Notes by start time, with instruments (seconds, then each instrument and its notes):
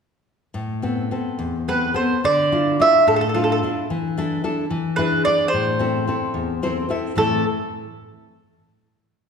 0.54 nylon-string guitar A2
0.82 nylon-string guitar B3 C4 A4
1.11 nylon-string guitar B3 C4 A4
1.39 nylon-string guitar E2
1.68 nylon-string guitar B3 C4 A4, mandolin B4
1.94 nylon-string guitar B3 C4 A4, mandolin C5
2.24 nylon-string guitar D3, mandolin D5
2.52 nylon-string guitar D4 E4 F4
2.80 nylon-string guitar D4 E4 F4, mandolin E5
3.07 nylon-string guitar A2, mandolin A4
3.16 mandolin A4
3.21 mandolin A4
3.29 mandolin A4
3.34 nylon-string guitar D4 E4 F4, mandolin A4
3.44 mandolin A4
3.52 mandolin A4
3.63 nylon-string guitar D4 E4 F4
3.90 nylon-string guitar E3
4.17 nylon-string guitar D4 E4 A4
4.44 nylon-string guitar D4 E4 A4
4.71 nylon-string guitar E3
4.96 nylon-string guitar D4 E4 G#4, mandolin B4
5.25 nylon-string guitar D4 E4 G#4, mandolin D5
5.48 mandolin C5
5.54 nylon-string guitar A2
5.79 nylon-string guitar C4 E4 A4
6.07 nylon-string guitar C4 E4 A4
6.34 nylon-string guitar E2
6.63 nylon-string guitar C4 E4 A4 C5
6.89 nylon-string guitar C4 E4 A4 E5
7.16 nylon-string guitar A2 E3 A3 C4 E4, mandolin A4